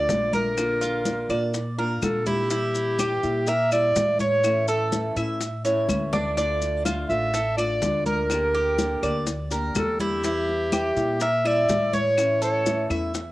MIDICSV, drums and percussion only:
0, 0, Header, 1, 2, 480
1, 0, Start_track
1, 0, Key_signature, -1, "minor"
1, 0, Tempo, 483481
1, 571, Time_signature, 4, 2, 24, 8
1, 13223, End_track
2, 0, Start_track
2, 0, Title_t, "Drums"
2, 89, Note_on_c, 9, 60, 63
2, 89, Note_on_c, 9, 61, 75
2, 89, Note_on_c, 9, 63, 75
2, 94, Note_on_c, 9, 70, 67
2, 188, Note_off_c, 9, 60, 0
2, 188, Note_off_c, 9, 61, 0
2, 188, Note_off_c, 9, 63, 0
2, 193, Note_off_c, 9, 70, 0
2, 327, Note_on_c, 9, 63, 77
2, 329, Note_on_c, 9, 60, 30
2, 338, Note_on_c, 9, 70, 26
2, 426, Note_off_c, 9, 63, 0
2, 428, Note_off_c, 9, 60, 0
2, 437, Note_off_c, 9, 70, 0
2, 563, Note_on_c, 9, 63, 32
2, 572, Note_on_c, 9, 60, 60
2, 572, Note_on_c, 9, 70, 66
2, 573, Note_on_c, 9, 75, 57
2, 662, Note_off_c, 9, 63, 0
2, 671, Note_off_c, 9, 60, 0
2, 671, Note_off_c, 9, 70, 0
2, 672, Note_off_c, 9, 75, 0
2, 807, Note_on_c, 9, 63, 31
2, 815, Note_on_c, 9, 60, 31
2, 815, Note_on_c, 9, 70, 55
2, 906, Note_off_c, 9, 63, 0
2, 914, Note_off_c, 9, 60, 0
2, 914, Note_off_c, 9, 70, 0
2, 1047, Note_on_c, 9, 63, 87
2, 1050, Note_on_c, 9, 70, 61
2, 1055, Note_on_c, 9, 60, 53
2, 1146, Note_off_c, 9, 63, 0
2, 1150, Note_off_c, 9, 70, 0
2, 1154, Note_off_c, 9, 60, 0
2, 1289, Note_on_c, 9, 70, 26
2, 1290, Note_on_c, 9, 63, 30
2, 1294, Note_on_c, 9, 75, 56
2, 1389, Note_off_c, 9, 70, 0
2, 1390, Note_off_c, 9, 63, 0
2, 1393, Note_off_c, 9, 75, 0
2, 1527, Note_on_c, 9, 70, 59
2, 1530, Note_on_c, 9, 63, 30
2, 1531, Note_on_c, 9, 60, 62
2, 1627, Note_off_c, 9, 70, 0
2, 1629, Note_off_c, 9, 63, 0
2, 1631, Note_off_c, 9, 60, 0
2, 1770, Note_on_c, 9, 60, 29
2, 1771, Note_on_c, 9, 63, 29
2, 1870, Note_off_c, 9, 60, 0
2, 1871, Note_off_c, 9, 63, 0
2, 2006, Note_on_c, 9, 70, 64
2, 2009, Note_on_c, 9, 75, 58
2, 2011, Note_on_c, 9, 63, 78
2, 2013, Note_on_c, 9, 60, 59
2, 2013, Note_on_c, 9, 61, 73
2, 2106, Note_off_c, 9, 70, 0
2, 2108, Note_off_c, 9, 75, 0
2, 2111, Note_off_c, 9, 63, 0
2, 2112, Note_off_c, 9, 60, 0
2, 2112, Note_off_c, 9, 61, 0
2, 2243, Note_on_c, 9, 70, 27
2, 2252, Note_on_c, 9, 63, 78
2, 2253, Note_on_c, 9, 60, 31
2, 2343, Note_off_c, 9, 70, 0
2, 2352, Note_off_c, 9, 60, 0
2, 2352, Note_off_c, 9, 63, 0
2, 2484, Note_on_c, 9, 70, 65
2, 2491, Note_on_c, 9, 63, 31
2, 2494, Note_on_c, 9, 60, 61
2, 2583, Note_off_c, 9, 70, 0
2, 2590, Note_off_c, 9, 63, 0
2, 2593, Note_off_c, 9, 60, 0
2, 2727, Note_on_c, 9, 70, 55
2, 2728, Note_on_c, 9, 63, 32
2, 2737, Note_on_c, 9, 60, 31
2, 2826, Note_off_c, 9, 70, 0
2, 2827, Note_off_c, 9, 63, 0
2, 2837, Note_off_c, 9, 60, 0
2, 2965, Note_on_c, 9, 63, 80
2, 2968, Note_on_c, 9, 70, 62
2, 2973, Note_on_c, 9, 75, 58
2, 2976, Note_on_c, 9, 60, 52
2, 3065, Note_off_c, 9, 63, 0
2, 3067, Note_off_c, 9, 70, 0
2, 3072, Note_off_c, 9, 75, 0
2, 3075, Note_off_c, 9, 60, 0
2, 3209, Note_on_c, 9, 70, 27
2, 3216, Note_on_c, 9, 60, 32
2, 3309, Note_off_c, 9, 70, 0
2, 3315, Note_off_c, 9, 60, 0
2, 3442, Note_on_c, 9, 70, 62
2, 3449, Note_on_c, 9, 63, 30
2, 3456, Note_on_c, 9, 60, 67
2, 3542, Note_off_c, 9, 70, 0
2, 3548, Note_off_c, 9, 63, 0
2, 3555, Note_off_c, 9, 60, 0
2, 3689, Note_on_c, 9, 70, 55
2, 3691, Note_on_c, 9, 63, 28
2, 3692, Note_on_c, 9, 75, 57
2, 3788, Note_off_c, 9, 70, 0
2, 3790, Note_off_c, 9, 63, 0
2, 3791, Note_off_c, 9, 75, 0
2, 3929, Note_on_c, 9, 70, 68
2, 3930, Note_on_c, 9, 63, 72
2, 3935, Note_on_c, 9, 60, 62
2, 3935, Note_on_c, 9, 61, 72
2, 4028, Note_off_c, 9, 70, 0
2, 4029, Note_off_c, 9, 63, 0
2, 4034, Note_off_c, 9, 60, 0
2, 4034, Note_off_c, 9, 61, 0
2, 4163, Note_on_c, 9, 63, 73
2, 4165, Note_on_c, 9, 70, 26
2, 4172, Note_on_c, 9, 60, 33
2, 4262, Note_off_c, 9, 63, 0
2, 4265, Note_off_c, 9, 70, 0
2, 4272, Note_off_c, 9, 60, 0
2, 4406, Note_on_c, 9, 70, 68
2, 4409, Note_on_c, 9, 63, 31
2, 4410, Note_on_c, 9, 60, 62
2, 4414, Note_on_c, 9, 75, 59
2, 4505, Note_off_c, 9, 70, 0
2, 4508, Note_off_c, 9, 63, 0
2, 4509, Note_off_c, 9, 60, 0
2, 4514, Note_off_c, 9, 75, 0
2, 4645, Note_on_c, 9, 70, 55
2, 4650, Note_on_c, 9, 60, 29
2, 4650, Note_on_c, 9, 63, 31
2, 4745, Note_off_c, 9, 70, 0
2, 4749, Note_off_c, 9, 63, 0
2, 4750, Note_off_c, 9, 60, 0
2, 4887, Note_on_c, 9, 63, 89
2, 4887, Note_on_c, 9, 70, 66
2, 4890, Note_on_c, 9, 60, 51
2, 4987, Note_off_c, 9, 63, 0
2, 4987, Note_off_c, 9, 70, 0
2, 4989, Note_off_c, 9, 60, 0
2, 5129, Note_on_c, 9, 63, 30
2, 5129, Note_on_c, 9, 70, 26
2, 5134, Note_on_c, 9, 75, 56
2, 5228, Note_off_c, 9, 63, 0
2, 5228, Note_off_c, 9, 70, 0
2, 5234, Note_off_c, 9, 75, 0
2, 5366, Note_on_c, 9, 63, 31
2, 5368, Note_on_c, 9, 60, 63
2, 5371, Note_on_c, 9, 70, 59
2, 5465, Note_off_c, 9, 63, 0
2, 5467, Note_off_c, 9, 60, 0
2, 5470, Note_off_c, 9, 70, 0
2, 5603, Note_on_c, 9, 60, 30
2, 5607, Note_on_c, 9, 63, 29
2, 5613, Note_on_c, 9, 70, 54
2, 5703, Note_off_c, 9, 60, 0
2, 5706, Note_off_c, 9, 63, 0
2, 5713, Note_off_c, 9, 70, 0
2, 5844, Note_on_c, 9, 60, 83
2, 5848, Note_on_c, 9, 63, 72
2, 5851, Note_on_c, 9, 70, 65
2, 5852, Note_on_c, 9, 75, 59
2, 5943, Note_off_c, 9, 60, 0
2, 5947, Note_off_c, 9, 63, 0
2, 5950, Note_off_c, 9, 70, 0
2, 5951, Note_off_c, 9, 75, 0
2, 6084, Note_on_c, 9, 61, 90
2, 6090, Note_on_c, 9, 70, 26
2, 6091, Note_on_c, 9, 63, 77
2, 6183, Note_off_c, 9, 61, 0
2, 6189, Note_off_c, 9, 70, 0
2, 6191, Note_off_c, 9, 63, 0
2, 6326, Note_on_c, 9, 60, 63
2, 6330, Note_on_c, 9, 70, 66
2, 6332, Note_on_c, 9, 63, 33
2, 6425, Note_off_c, 9, 60, 0
2, 6429, Note_off_c, 9, 70, 0
2, 6432, Note_off_c, 9, 63, 0
2, 6565, Note_on_c, 9, 60, 31
2, 6568, Note_on_c, 9, 70, 53
2, 6571, Note_on_c, 9, 63, 31
2, 6665, Note_off_c, 9, 60, 0
2, 6667, Note_off_c, 9, 70, 0
2, 6671, Note_off_c, 9, 63, 0
2, 6805, Note_on_c, 9, 60, 52
2, 6808, Note_on_c, 9, 63, 84
2, 6811, Note_on_c, 9, 70, 63
2, 6811, Note_on_c, 9, 75, 59
2, 6904, Note_off_c, 9, 60, 0
2, 6907, Note_off_c, 9, 63, 0
2, 6910, Note_off_c, 9, 70, 0
2, 6910, Note_off_c, 9, 75, 0
2, 7047, Note_on_c, 9, 60, 32
2, 7049, Note_on_c, 9, 70, 25
2, 7146, Note_off_c, 9, 60, 0
2, 7148, Note_off_c, 9, 70, 0
2, 7285, Note_on_c, 9, 60, 63
2, 7286, Note_on_c, 9, 70, 64
2, 7291, Note_on_c, 9, 63, 32
2, 7384, Note_off_c, 9, 60, 0
2, 7386, Note_off_c, 9, 70, 0
2, 7390, Note_off_c, 9, 63, 0
2, 7525, Note_on_c, 9, 63, 28
2, 7528, Note_on_c, 9, 70, 54
2, 7529, Note_on_c, 9, 75, 60
2, 7624, Note_off_c, 9, 63, 0
2, 7627, Note_off_c, 9, 70, 0
2, 7629, Note_off_c, 9, 75, 0
2, 7762, Note_on_c, 9, 60, 62
2, 7762, Note_on_c, 9, 61, 75
2, 7762, Note_on_c, 9, 63, 69
2, 7765, Note_on_c, 9, 70, 69
2, 7862, Note_off_c, 9, 60, 0
2, 7862, Note_off_c, 9, 61, 0
2, 7862, Note_off_c, 9, 63, 0
2, 7864, Note_off_c, 9, 70, 0
2, 8001, Note_on_c, 9, 70, 26
2, 8005, Note_on_c, 9, 60, 31
2, 8005, Note_on_c, 9, 63, 70
2, 8101, Note_off_c, 9, 70, 0
2, 8104, Note_off_c, 9, 63, 0
2, 8105, Note_off_c, 9, 60, 0
2, 8238, Note_on_c, 9, 60, 64
2, 8244, Note_on_c, 9, 63, 32
2, 8246, Note_on_c, 9, 70, 67
2, 8248, Note_on_c, 9, 75, 62
2, 8338, Note_off_c, 9, 60, 0
2, 8344, Note_off_c, 9, 63, 0
2, 8345, Note_off_c, 9, 70, 0
2, 8347, Note_off_c, 9, 75, 0
2, 8479, Note_on_c, 9, 60, 31
2, 8486, Note_on_c, 9, 63, 32
2, 8579, Note_off_c, 9, 60, 0
2, 8585, Note_off_c, 9, 63, 0
2, 8721, Note_on_c, 9, 60, 53
2, 8723, Note_on_c, 9, 70, 64
2, 8724, Note_on_c, 9, 63, 84
2, 8821, Note_off_c, 9, 60, 0
2, 8823, Note_off_c, 9, 63, 0
2, 8823, Note_off_c, 9, 70, 0
2, 8964, Note_on_c, 9, 63, 29
2, 8966, Note_on_c, 9, 70, 25
2, 8967, Note_on_c, 9, 75, 59
2, 9063, Note_off_c, 9, 63, 0
2, 9066, Note_off_c, 9, 70, 0
2, 9067, Note_off_c, 9, 75, 0
2, 9201, Note_on_c, 9, 60, 66
2, 9202, Note_on_c, 9, 70, 64
2, 9205, Note_on_c, 9, 63, 31
2, 9300, Note_off_c, 9, 60, 0
2, 9301, Note_off_c, 9, 70, 0
2, 9304, Note_off_c, 9, 63, 0
2, 9440, Note_on_c, 9, 60, 31
2, 9442, Note_on_c, 9, 70, 57
2, 9449, Note_on_c, 9, 63, 28
2, 9539, Note_off_c, 9, 60, 0
2, 9541, Note_off_c, 9, 70, 0
2, 9549, Note_off_c, 9, 63, 0
2, 9681, Note_on_c, 9, 70, 66
2, 9686, Note_on_c, 9, 63, 73
2, 9688, Note_on_c, 9, 75, 62
2, 9689, Note_on_c, 9, 60, 64
2, 9689, Note_on_c, 9, 61, 78
2, 9780, Note_off_c, 9, 70, 0
2, 9786, Note_off_c, 9, 63, 0
2, 9788, Note_off_c, 9, 60, 0
2, 9788, Note_off_c, 9, 61, 0
2, 9788, Note_off_c, 9, 75, 0
2, 9924, Note_on_c, 9, 63, 71
2, 9925, Note_on_c, 9, 70, 26
2, 9930, Note_on_c, 9, 60, 33
2, 10023, Note_off_c, 9, 63, 0
2, 10024, Note_off_c, 9, 70, 0
2, 10030, Note_off_c, 9, 60, 0
2, 10163, Note_on_c, 9, 70, 69
2, 10169, Note_on_c, 9, 63, 31
2, 10171, Note_on_c, 9, 60, 65
2, 10262, Note_off_c, 9, 70, 0
2, 10268, Note_off_c, 9, 63, 0
2, 10271, Note_off_c, 9, 60, 0
2, 10411, Note_on_c, 9, 63, 32
2, 10415, Note_on_c, 9, 60, 32
2, 10511, Note_off_c, 9, 63, 0
2, 10514, Note_off_c, 9, 60, 0
2, 10645, Note_on_c, 9, 63, 88
2, 10647, Note_on_c, 9, 70, 66
2, 10650, Note_on_c, 9, 75, 59
2, 10652, Note_on_c, 9, 60, 55
2, 10744, Note_off_c, 9, 63, 0
2, 10747, Note_off_c, 9, 70, 0
2, 10749, Note_off_c, 9, 75, 0
2, 10751, Note_off_c, 9, 60, 0
2, 10886, Note_on_c, 9, 70, 28
2, 10896, Note_on_c, 9, 60, 31
2, 10985, Note_off_c, 9, 70, 0
2, 10995, Note_off_c, 9, 60, 0
2, 11121, Note_on_c, 9, 70, 64
2, 11130, Note_on_c, 9, 63, 32
2, 11133, Note_on_c, 9, 60, 68
2, 11220, Note_off_c, 9, 70, 0
2, 11229, Note_off_c, 9, 63, 0
2, 11232, Note_off_c, 9, 60, 0
2, 11365, Note_on_c, 9, 63, 28
2, 11370, Note_on_c, 9, 75, 58
2, 11465, Note_off_c, 9, 63, 0
2, 11470, Note_off_c, 9, 75, 0
2, 11605, Note_on_c, 9, 70, 70
2, 11608, Note_on_c, 9, 63, 76
2, 11613, Note_on_c, 9, 60, 60
2, 11613, Note_on_c, 9, 61, 75
2, 11704, Note_off_c, 9, 70, 0
2, 11707, Note_off_c, 9, 63, 0
2, 11712, Note_off_c, 9, 60, 0
2, 11712, Note_off_c, 9, 61, 0
2, 11848, Note_on_c, 9, 63, 78
2, 11850, Note_on_c, 9, 70, 27
2, 11856, Note_on_c, 9, 60, 32
2, 11947, Note_off_c, 9, 63, 0
2, 11949, Note_off_c, 9, 70, 0
2, 11955, Note_off_c, 9, 60, 0
2, 12088, Note_on_c, 9, 75, 60
2, 12089, Note_on_c, 9, 63, 31
2, 12092, Note_on_c, 9, 60, 66
2, 12094, Note_on_c, 9, 70, 68
2, 12187, Note_off_c, 9, 75, 0
2, 12189, Note_off_c, 9, 63, 0
2, 12191, Note_off_c, 9, 60, 0
2, 12193, Note_off_c, 9, 70, 0
2, 12330, Note_on_c, 9, 63, 33
2, 12332, Note_on_c, 9, 70, 53
2, 12334, Note_on_c, 9, 60, 30
2, 12430, Note_off_c, 9, 63, 0
2, 12432, Note_off_c, 9, 70, 0
2, 12433, Note_off_c, 9, 60, 0
2, 12571, Note_on_c, 9, 70, 67
2, 12575, Note_on_c, 9, 60, 55
2, 12575, Note_on_c, 9, 63, 85
2, 12670, Note_off_c, 9, 70, 0
2, 12674, Note_off_c, 9, 60, 0
2, 12674, Note_off_c, 9, 63, 0
2, 12811, Note_on_c, 9, 75, 61
2, 12812, Note_on_c, 9, 70, 26
2, 12814, Note_on_c, 9, 63, 30
2, 12910, Note_off_c, 9, 75, 0
2, 12911, Note_off_c, 9, 70, 0
2, 12914, Note_off_c, 9, 63, 0
2, 13049, Note_on_c, 9, 70, 63
2, 13052, Note_on_c, 9, 63, 29
2, 13054, Note_on_c, 9, 60, 68
2, 13149, Note_off_c, 9, 70, 0
2, 13151, Note_off_c, 9, 63, 0
2, 13153, Note_off_c, 9, 60, 0
2, 13223, End_track
0, 0, End_of_file